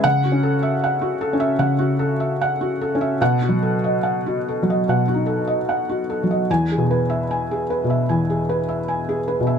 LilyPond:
<<
  \new Staff \with { instrumentName = "Felt piano" } { \time 4/4 \key e \major \tempo 4 = 75 << { fis''8 r2. r8 | fis''8 r2. r8 | gis''8 r2. r8 | } \\ { r16 fis'16 a'16 e''16 fis''16 fis'16 a'16 e''16 fis''16 fis'16 a'16 e''16 fis''16 fis'16 a'16 e''16 | r16 fis'16 a'16 dis''16 fis''16 fis'16 a'16 dis''16 fis''16 fis'16 a'16 dis''16 fis''16 fis'16 a'16 dis''16 | r16 gis'16 b'16 e''16 gis''16 gis'16 b'16 e''16 gis''16 gis'16 b'16 e''16 gis''16 gis'16 b'16 e''16 | } >> }
  \new Staff \with { instrumentName = "Felt piano" } { \clef bass \time 4/4 \key e \major \tuplet 3/2 { cis8 cis'4 r4 cis'8 } cis4~ \tuplet 3/2 { cis4 cis'8 } | \tuplet 3/2 { b,8 fis4 r4 fis8 b,8 dis'4 r4 fis8 } | \tuplet 3/2 { e,8 b,4 r4 b,8 } e,4~ \tuplet 3/2 { e,4 b,8 } | }
>>